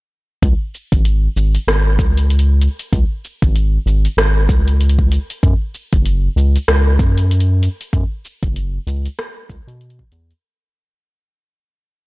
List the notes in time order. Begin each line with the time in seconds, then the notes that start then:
0.42 C#2, kick, open hi-hat, shaker
0.75 shaker
0.92 G#1, kick, open hi-hat, shaker
1.05 open hi-hat, shaker
1.36 G#1, shaker
1.55 open hi-hat, shaker
1.67 G#1, cross-stick, open hi-hat, shaker
1.99 C#2, kick, shaker
2.17 open hi-hat, shaker
2.30 open hi-hat, shaker
2.39 open hi-hat
2.61 open hi-hat, shaker
2.79 open hi-hat, shaker
2.92 C#2, kick, open hi-hat, shaker
3.25 shaker
3.42 G#1, kick, open hi-hat, shaker
3.56 open hi-hat, shaker
3.86 G#1, shaker
4.05 open hi-hat, shaker
4.17 G#1, cross-stick, open hi-hat, shaker
4.49 C#2, kick, shaker
4.68 open hi-hat, shaker
4.81 open hi-hat, shaker
4.90 open hi-hat
4.99 kick
5.12 open hi-hat, shaker
5.30 open hi-hat, shaker
5.43 F#2, kick, open hi-hat, shaker
5.75 shaker
5.93 F#1, kick, open hi-hat, shaker
6.05 open hi-hat, shaker
6.36 C#2, shaker
6.56 open hi-hat, shaker
6.68 C#2, cross-stick, open hi-hat, shaker
6.99 F#2, kick, shaker
7.18 open hi-hat, shaker
7.31 open hi-hat, shaker
7.40 open hi-hat
7.63 open hi-hat, shaker
7.81 open hi-hat, shaker
7.93 F#2, kick, open hi-hat, shaker
8.25 shaker
8.43 F#1, kick, open hi-hat, shaker
8.56 open hi-hat, shaker
8.87 C#2, open hi-hat, shaker
9.05 open hi-hat, shaker
9.19 cross-stick, open hi-hat, shaker
9.49 C#2, kick, open hi-hat, shaker
9.67 B2, open hi-hat, shaker
9.81 open hi-hat, shaker
9.90 open hi-hat
9.99 kick
10.12 E2, open hi-hat, shaker
10.31 open hi-hat, shaker